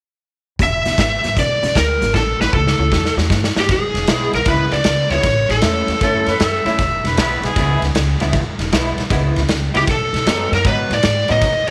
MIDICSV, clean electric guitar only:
0, 0, Header, 1, 2, 480
1, 0, Start_track
1, 0, Tempo, 386598
1, 742, Time_signature, 4, 2, 24, 8
1, 14530, End_track
2, 0, Start_track
2, 0, Title_t, "Clean electric guitar"
2, 0, Program_c, 0, 27
2, 745, Note_on_c, 0, 40, 58
2, 752, Note_on_c, 0, 47, 75
2, 1030, Note_off_c, 0, 40, 0
2, 1033, Note_off_c, 0, 47, 0
2, 1065, Note_on_c, 0, 40, 55
2, 1070, Note_on_c, 0, 47, 64
2, 1209, Note_off_c, 0, 40, 0
2, 1211, Note_off_c, 0, 47, 0
2, 1232, Note_on_c, 0, 40, 66
2, 1235, Note_on_c, 0, 47, 72
2, 1514, Note_off_c, 0, 40, 0
2, 1515, Note_off_c, 0, 47, 0
2, 1546, Note_on_c, 0, 40, 62
2, 1552, Note_on_c, 0, 47, 68
2, 1689, Note_off_c, 0, 40, 0
2, 1693, Note_off_c, 0, 47, 0
2, 1704, Note_on_c, 0, 40, 65
2, 1714, Note_on_c, 0, 49, 76
2, 1990, Note_off_c, 0, 40, 0
2, 1995, Note_off_c, 0, 49, 0
2, 2023, Note_on_c, 0, 40, 64
2, 2029, Note_on_c, 0, 49, 66
2, 2168, Note_off_c, 0, 40, 0
2, 2171, Note_off_c, 0, 49, 0
2, 2183, Note_on_c, 0, 40, 66
2, 2189, Note_on_c, 0, 47, 86
2, 2469, Note_off_c, 0, 40, 0
2, 2472, Note_off_c, 0, 47, 0
2, 2505, Note_on_c, 0, 40, 51
2, 2512, Note_on_c, 0, 47, 58
2, 2649, Note_off_c, 0, 40, 0
2, 2652, Note_off_c, 0, 47, 0
2, 2666, Note_on_c, 0, 45, 57
2, 2673, Note_on_c, 0, 52, 77
2, 2951, Note_off_c, 0, 45, 0
2, 2955, Note_off_c, 0, 52, 0
2, 2987, Note_on_c, 0, 45, 63
2, 2996, Note_on_c, 0, 52, 69
2, 3130, Note_off_c, 0, 45, 0
2, 3134, Note_off_c, 0, 52, 0
2, 3151, Note_on_c, 0, 45, 69
2, 3160, Note_on_c, 0, 52, 83
2, 3433, Note_off_c, 0, 45, 0
2, 3438, Note_off_c, 0, 52, 0
2, 3469, Note_on_c, 0, 45, 70
2, 3476, Note_on_c, 0, 52, 70
2, 3611, Note_off_c, 0, 45, 0
2, 3614, Note_off_c, 0, 52, 0
2, 3628, Note_on_c, 0, 45, 72
2, 3634, Note_on_c, 0, 54, 80
2, 3912, Note_off_c, 0, 45, 0
2, 3915, Note_off_c, 0, 54, 0
2, 3942, Note_on_c, 0, 45, 60
2, 3946, Note_on_c, 0, 54, 68
2, 4087, Note_off_c, 0, 45, 0
2, 4089, Note_off_c, 0, 54, 0
2, 4106, Note_on_c, 0, 45, 68
2, 4115, Note_on_c, 0, 52, 81
2, 4391, Note_off_c, 0, 45, 0
2, 4395, Note_off_c, 0, 52, 0
2, 4426, Note_on_c, 0, 45, 55
2, 4434, Note_on_c, 0, 52, 62
2, 4569, Note_off_c, 0, 45, 0
2, 4574, Note_off_c, 0, 52, 0
2, 5071, Note_on_c, 0, 52, 77
2, 5076, Note_on_c, 0, 56, 79
2, 5080, Note_on_c, 0, 59, 83
2, 5081, Note_on_c, 0, 64, 82
2, 5433, Note_off_c, 0, 52, 0
2, 5436, Note_off_c, 0, 56, 0
2, 5438, Note_off_c, 0, 59, 0
2, 5439, Note_off_c, 0, 64, 0
2, 5546, Note_on_c, 0, 52, 68
2, 5553, Note_on_c, 0, 56, 69
2, 5553, Note_on_c, 0, 59, 76
2, 5558, Note_on_c, 0, 64, 78
2, 5911, Note_off_c, 0, 52, 0
2, 5914, Note_off_c, 0, 59, 0
2, 5915, Note_off_c, 0, 56, 0
2, 5917, Note_off_c, 0, 64, 0
2, 6356, Note_on_c, 0, 64, 72
2, 6358, Note_on_c, 0, 59, 66
2, 6364, Note_on_c, 0, 56, 61
2, 6370, Note_on_c, 0, 52, 59
2, 6511, Note_off_c, 0, 59, 0
2, 6511, Note_off_c, 0, 64, 0
2, 6514, Note_off_c, 0, 56, 0
2, 6517, Note_off_c, 0, 52, 0
2, 6986, Note_on_c, 0, 45, 79
2, 6992, Note_on_c, 0, 57, 83
2, 6996, Note_on_c, 0, 61, 83
2, 7000, Note_on_c, 0, 64, 82
2, 7351, Note_off_c, 0, 45, 0
2, 7354, Note_off_c, 0, 57, 0
2, 7356, Note_off_c, 0, 61, 0
2, 7358, Note_off_c, 0, 64, 0
2, 7477, Note_on_c, 0, 45, 66
2, 7478, Note_on_c, 0, 57, 70
2, 7487, Note_on_c, 0, 61, 80
2, 7491, Note_on_c, 0, 64, 71
2, 7836, Note_off_c, 0, 45, 0
2, 7837, Note_off_c, 0, 57, 0
2, 7841, Note_off_c, 0, 61, 0
2, 7843, Note_off_c, 0, 64, 0
2, 8266, Note_on_c, 0, 64, 78
2, 8273, Note_on_c, 0, 61, 74
2, 8275, Note_on_c, 0, 57, 76
2, 8281, Note_on_c, 0, 45, 55
2, 8425, Note_off_c, 0, 64, 0
2, 8428, Note_off_c, 0, 61, 0
2, 8430, Note_off_c, 0, 57, 0
2, 8433, Note_off_c, 0, 45, 0
2, 8916, Note_on_c, 0, 52, 79
2, 8923, Note_on_c, 0, 56, 83
2, 8929, Note_on_c, 0, 59, 89
2, 8932, Note_on_c, 0, 64, 90
2, 9275, Note_off_c, 0, 52, 0
2, 9279, Note_off_c, 0, 56, 0
2, 9282, Note_off_c, 0, 59, 0
2, 9284, Note_off_c, 0, 64, 0
2, 9396, Note_on_c, 0, 52, 69
2, 9404, Note_on_c, 0, 56, 70
2, 9405, Note_on_c, 0, 59, 83
2, 9413, Note_on_c, 0, 64, 80
2, 9755, Note_off_c, 0, 52, 0
2, 9759, Note_off_c, 0, 56, 0
2, 9760, Note_off_c, 0, 59, 0
2, 9764, Note_off_c, 0, 64, 0
2, 10192, Note_on_c, 0, 59, 63
2, 10193, Note_on_c, 0, 64, 77
2, 10201, Note_on_c, 0, 56, 63
2, 10206, Note_on_c, 0, 52, 62
2, 10443, Note_off_c, 0, 59, 0
2, 10444, Note_off_c, 0, 64, 0
2, 10448, Note_off_c, 0, 56, 0
2, 10450, Note_off_c, 0, 52, 0
2, 10833, Note_on_c, 0, 52, 80
2, 10839, Note_on_c, 0, 56, 77
2, 10840, Note_on_c, 0, 59, 81
2, 10845, Note_on_c, 0, 64, 93
2, 11194, Note_off_c, 0, 52, 0
2, 11197, Note_off_c, 0, 56, 0
2, 11197, Note_off_c, 0, 59, 0
2, 11200, Note_off_c, 0, 64, 0
2, 11304, Note_on_c, 0, 52, 70
2, 11308, Note_on_c, 0, 56, 73
2, 11315, Note_on_c, 0, 59, 79
2, 11317, Note_on_c, 0, 64, 73
2, 11670, Note_off_c, 0, 52, 0
2, 11672, Note_off_c, 0, 56, 0
2, 11675, Note_off_c, 0, 59, 0
2, 11676, Note_off_c, 0, 64, 0
2, 12095, Note_on_c, 0, 64, 76
2, 12099, Note_on_c, 0, 59, 71
2, 12107, Note_on_c, 0, 52, 63
2, 12109, Note_on_c, 0, 56, 66
2, 12260, Note_off_c, 0, 64, 0
2, 12261, Note_off_c, 0, 59, 0
2, 12266, Note_off_c, 0, 52, 0
2, 12266, Note_off_c, 0, 56, 0
2, 12744, Note_on_c, 0, 47, 84
2, 12746, Note_on_c, 0, 54, 82
2, 12755, Note_on_c, 0, 59, 78
2, 12758, Note_on_c, 0, 63, 85
2, 13110, Note_off_c, 0, 47, 0
2, 13111, Note_off_c, 0, 54, 0
2, 13115, Note_off_c, 0, 59, 0
2, 13117, Note_off_c, 0, 63, 0
2, 13223, Note_on_c, 0, 47, 72
2, 13230, Note_on_c, 0, 54, 73
2, 13237, Note_on_c, 0, 59, 83
2, 13240, Note_on_c, 0, 63, 72
2, 13589, Note_off_c, 0, 47, 0
2, 13593, Note_off_c, 0, 54, 0
2, 13596, Note_off_c, 0, 59, 0
2, 13597, Note_off_c, 0, 63, 0
2, 14017, Note_on_c, 0, 63, 77
2, 14023, Note_on_c, 0, 59, 70
2, 14029, Note_on_c, 0, 54, 61
2, 14034, Note_on_c, 0, 47, 60
2, 14276, Note_off_c, 0, 63, 0
2, 14279, Note_off_c, 0, 59, 0
2, 14282, Note_off_c, 0, 54, 0
2, 14284, Note_off_c, 0, 47, 0
2, 14530, End_track
0, 0, End_of_file